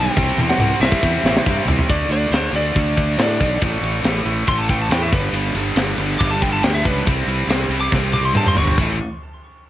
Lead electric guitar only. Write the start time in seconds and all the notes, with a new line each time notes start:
Already playing: G5
0.50 F#5
0.81 E5
1.90 D5
2.12 D5
2.32 C5
2.56 D5
3.19 D5
4.48 C6
4.58 A5
4.70 G5
4.82 A5
4.92 G5
5.02 E5
5.13 B4
6.19 D6
6.30 A5
6.42 G5
6.53 A5
6.63 G5
6.74 E5
6.85 B4
7.81 D6
8.13 D6
8.25 C6
8.37 A5
8.48 C6
8.58 C#6